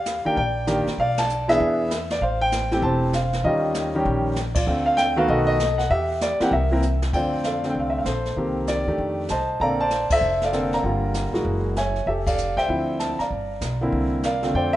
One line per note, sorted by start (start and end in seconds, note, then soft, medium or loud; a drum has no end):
0.00 0.22 D#2 medium
0.00 0.22 G4 medium
0.00 0.26 F5 medium
0.06 snare medium
0.06 hi-hat pedal medium
0.25 0.35 D#3 medium
0.25 0.35 A#3 medium
0.25 0.36 D4 medium
0.25 0.36 G4 medium
0.25 0.36 G5 medium
0.25 muted upright bass stroke soft
0.36 0.83 A#1 medium
0.36 0.95 D5 medium
0.36 1.00 G5 medium
0.36 brush sweep soft
0.36 kick soft
0.67 0.85 D#3 medium
0.67 0.85 A#3 medium
0.67 0.85 D4 medium
0.67 0.85 G4 medium
0.67 snare medium
0.67 hi-hat pedal medium
0.87 muted upright bass stroke soft
0.87 snare soft
0.98 1.57 B1 medium
0.98 1.57 D5 medium
0.98 1.19 F5 loud
0.98 brush sweep soft
0.98 kick soft
1.18 1.47 A5 medium
1.18 snare medium
1.18 ride medium
1.29 hi-hat pedal medium
1.48 1.88 E3 medium
1.48 1.88 B3 medium
1.48 1.89 D4 medium
1.48 1.89 G#4 medium
1.48 2.06 E5 loud
1.48 snare soft
1.60 2.18 E2 medium
1.60 brush sweep soft
1.60 kick soft
1.91 snare medium
1.91 hi-hat pedal soft
2.10 2.22 D5 medium
2.10 snare medium
2.21 2.80 A1 medium
2.21 2.80 C5 medium
2.21 2.40 F5 medium
2.21 brush sweep medium
2.21 kick soft
2.41 2.71 G5 loud
2.52 snare medium
2.52 hi-hat pedal medium
2.71 3.11 E3 medium
2.71 3.12 A3 medium
2.71 3.12 C4 medium
2.71 3.12 G4 medium
2.71 2.84 G5 medium
2.71 snare soft
2.82 3.41 E1 medium
2.82 3.41 C5 medium
2.82 3.12 A5 medium
2.82 brush sweep soft
2.82 kick soft
3.13 3.42 F5 medium
3.13 snare medium
3.13 hi-hat pedal medium
3.33 snare soft
3.44 4.03 D#2 medium
3.44 3.91 D#3 medium
3.44 3.91 G3 medium
3.44 3.91 C#4 medium
3.44 3.91 F4 medium
3.44 3.94 G4 medium
3.44 4.02 D#5 medium
3.44 brush sweep medium
3.44 kick soft
3.74 snare medium
3.74 hi-hat pedal medium
3.95 4.34 D#3 medium
3.95 4.34 G3 medium
3.95 4.35 C#4 medium
3.95 4.35 G4 medium
4.05 4.64 A#1 medium
4.05 brush sweep soft
4.05 kick soft
4.36 snare medium
4.36 hi-hat pedal medium
4.55 4.66 F4 medium
4.55 4.87 D5 medium
4.55 kick medium
4.55 ride medium
4.67 5.25 D2 medium
4.67 5.13 D3 medium
4.67 5.14 A3 medium
4.67 5.14 C4 medium
4.67 5.14 F4 medium
4.67 brush sweep soft
4.86 4.98 F5 loud
4.97 5.16 G5 loud
4.97 snare medium
4.97 hi-hat pedal medium
5.16 5.57 D#3 medium
5.16 5.57 A3 medium
5.16 5.57 B3 medium
5.16 5.57 F#4 medium
5.16 5.29 F5 medium
5.28 5.87 B1 medium
5.28 5.88 A4 medium
5.28 5.45 D#5 medium
5.28 brush sweep medium
5.28 kick soft
5.47 5.79 D#5 loud
5.60 snare medium
5.60 hi-hat pedal medium
5.78 5.90 F#5 medium
5.78 snare soft
5.90 6.37 E2 medium
5.90 6.40 G4 medium
5.90 6.19 E5 medium
5.90 brush sweep medium
5.90 kick soft
6.21 6.40 D5 medium
6.21 snare medium
6.21 hi-hat pedal soft
6.40 6.51 E3 medium
6.40 6.51 A#3 medium
6.40 6.51 C4 medium
6.40 6.51 G4 medium
6.40 6.52 F#5 medium
6.40 muted upright bass stroke soft
6.40 snare soft
6.51 7.10 C2 medium
6.51 6.71 A#4 medium
6.51 6.99 E5 medium
6.51 brush sweep soft
6.51 kick soft
6.71 6.81 E3 medium
6.71 6.82 A#3 medium
6.71 6.82 C4 medium
6.71 6.82 A#4 medium
6.82 hi-hat pedal medium
7.02 snare medium
7.13 7.72 F2 medium
7.13 7.60 D3 medium
7.13 7.60 A3 medium
7.13 7.61 C4 soft
7.13 7.61 F4 medium
7.13 7.72 C5 medium
7.13 7.45 D5 medium
7.13 7.45 G5 medium
7.13 brush sweep soft
7.13 kick medium
7.13 ride medium
7.44 8.03 A4 medium
7.44 8.03 D5 medium
7.44 7.72 F5 medium
7.44 snare medium
7.44 hi-hat pedal soft
7.64 8.04 D3 medium
7.64 8.04 A3 medium
7.64 8.04 C4 medium
7.64 8.05 D4 medium
7.64 snare soft
7.70 7.79 G5 medium
7.74 8.03 C2 medium
7.74 brush sweep soft
7.74 kick soft
7.80 7.91 F5 medium
7.90 7.99 E5 medium
7.98 8.06 F5 medium
8.05 8.34 A#1 medium
8.05 8.64 A4 soft
8.05 8.64 C5 medium
8.05 snare soft
8.05 hi-hat pedal medium
8.25 snare soft
8.36 8.84 C2 medium
8.36 8.83 D#3 medium
8.36 8.83 A#3 medium
8.36 8.84 C4 medium
8.36 8.68 G4 medium
8.36 brush sweep soft
8.36 kick soft
8.67 8.87 G4 medium
8.67 8.97 A#4 medium
8.67 9.26 D5 medium
8.67 snare soft
8.67 hi-hat pedal medium
8.86 8.97 D#2 medium
8.86 9.27 D#3 medium
8.86 9.27 A3 medium
8.86 9.28 D4 medium
8.86 9.28 G4 medium
8.98 9.27 F2 medium
8.98 brush sweep soft
8.98 kick soft
9.29 9.58 C2 medium
9.29 9.59 C5 medium
9.29 9.59 D#5 medium
9.29 9.62 A5 medium
9.29 snare soft
9.29 hi-hat pedal soft
9.60 10.07 A#1 medium
9.60 9.78 D3 medium
9.60 9.78 A#3 medium
9.60 9.78 C4 medium
9.60 9.78 A4 medium
9.60 9.81 D5 medium
9.60 10.19 F5 medium
9.60 9.81 A#5 medium
9.60 brush sweep soft
9.60 kick soft
9.81 10.11 C5 medium
9.81 10.39 D5 medium
9.81 10.12 A5 loud
9.90 snare medium
9.90 hi-hat pedal soft
10.10 10.20 A1 medium
10.10 10.43 A4 medium
10.10 10.69 C5 medium
10.10 10.43 E5 loud
10.10 kick medium
10.10 ride medium
10.21 10.80 F1 medium
10.21 brush sweep soft
10.41 10.52 A4 medium
10.41 10.73 D5 medium
10.41 10.74 F5 medium
10.41 snare soft
10.52 10.82 D3 medium
10.52 10.83 A#3 medium
10.52 10.84 C4 medium
10.52 10.84 A4 medium
10.52 snare soft
10.52 hi-hat pedal medium
10.73 11.43 D5 medium
10.73 11.43 F5 medium
10.73 11.80 A#5 medium
10.73 snare soft
10.83 11.30 G1 medium
10.83 11.30 D3 medium
10.83 11.30 G3 medium
10.83 11.30 A#3 medium
10.83 11.31 F4 medium
10.83 brush sweep soft
10.83 kick soft
11.14 snare soft
11.14 hi-hat pedal medium
11.33 11.44 G1 medium
11.33 11.73 E3 medium
11.33 11.74 G#3 medium
11.33 11.74 A#3 medium
11.33 11.74 F#4 medium
11.33 snare soft
11.45 12.04 F#1 medium
11.45 brush sweep soft
11.45 kick soft
11.76 12.06 C#5 medium
11.76 12.06 E5 medium
11.76 12.08 G#5 medium
11.76 snare soft
11.76 hi-hat pedal soft
11.96 snare soft
12.06 12.54 F1 medium
12.06 12.65 G4 medium
12.06 12.26 A4 medium
12.06 12.12 E5 medium
12.06 brush sweep soft
12.06 kick soft
12.27 12.67 A4 medium
12.27 12.66 D5 medium
12.27 12.55 F5 medium
12.27 kick medium
12.27 ride medium
12.38 hi-hat pedal medium
12.57 12.67 C#2 medium
12.57 13.15 C5 medium
12.57 13.16 E5 medium
12.57 13.01 G5 medium
12.57 snare soft
12.68 13.16 D2 medium
12.68 13.15 D3 soft
12.68 13.15 F3 soft
12.68 13.15 C4 soft
12.68 13.16 E4 medium
12.68 brush sweep soft
12.68 kick soft
13.00 13.20 A5 medium
13.00 snare medium
13.00 hi-hat pedal soft
13.19 13.78 D5 medium
13.19 13.78 F5 soft
13.19 13.77 A#5 medium
13.19 muted upright bass stroke soft
13.19 snare soft
13.31 13.59 G1 medium
13.31 brush sweep soft
13.31 kick soft
13.61 13.90 B1 medium
13.61 snare medium
13.61 hi-hat pedal medium
13.81 14.21 D3 medium
13.81 14.21 A#3 medium
13.81 14.21 C4 medium
13.81 14.22 E4 medium
13.92 14.51 C2 medium
13.92 brush sweep soft
13.92 kick soft
14.23 14.53 A#4 medium
14.23 14.53 D5 medium
14.23 14.53 F5 medium
14.23 snare medium
14.23 hi-hat pedal soft
14.42 14.76 D3 medium
14.42 14.76 A3 medium
14.42 14.76 C4 medium
14.42 14.76 F4 medium
14.42 snare soft
14.54 14.76 F2 medium
14.54 14.73 C5 medium
14.54 14.76 D5 medium
14.54 14.73 G5 medium
14.54 brush sweep soft
14.54 kick soft
14.73 14.76 E5 loud